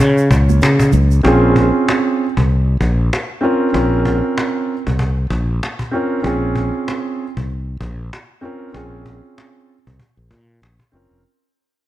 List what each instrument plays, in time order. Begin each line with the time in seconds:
Already playing: grand piano C#4 C#5
0.00 fretless electric bass C#3
0.18 shaker
0.30 fretless electric bass C#2, cajon bass, shaker
0.49 high conga, shaker
0.62 fretless electric bass C#3, cajon slap, shaker
0.79 cajon bass, shaker
0.92 fretless electric bass C#2, cajon slap, low conga, shaker
1.11 shaker
1.23 fretless electric bass A#1, grand piano C4 C#4 F4 G#4, cajon bass
1.56 cajon bass
1.74 cajon slap
1.88 cajon slap
2.37 fretless electric bass C2, cajon bass
2.49 cajon slap
2.81 fretless electric bass A#1, cajon bass
3.13 cajon slap
3.41 grand piano C4 C#4 F4 A#4, cajon slap
3.72 fretless electric bass A#1, grand piano C4 C#4 F4 A#4, cajon bass
3.94 cajon slap
4.05 cajon bass
4.23 cajon slap
4.38 cajon slap
4.87 fretless electric bass C2, cajon bass
4.99 cajon bass
5.30 fretless electric bass A#1, cajon bass
5.63 cajon slap
5.79 cajon bass
5.91 grand piano C4 C#4 F4 A#4, cajon slap
6.22 fretless electric bass A#1, grand piano C4 C#4 F4 G#4, cajon bass
6.55 cajon bass
6.74 cajon slap
6.88 cajon slap
7.37 fretless electric bass C2, cajon bass
7.50 cajon slap
7.80 fretless electric bass A#1, cajon bass
8.13 cajon slap
8.41 grand piano C4 C#4 F4 A#4, cajon slap
8.72 fretless electric bass A#1, grand piano C4 C#4 F4 G#4, cajon bass
8.94 cajon slap
9.06 cajon bass
9.24 cajon slap
9.38 cajon slap
9.87 fretless electric bass C2, cajon bass
10.00 cajon bass
10.17 fretless electric bass A#1
10.31 fretless electric bass A#2, cajon bass
10.62 fretless electric bass A#1, cajon slap
10.80 cajon bass
10.92 fretless electric bass F#1, grand piano C4 C#4 F4 A#4
11.11 fretless electric bass F1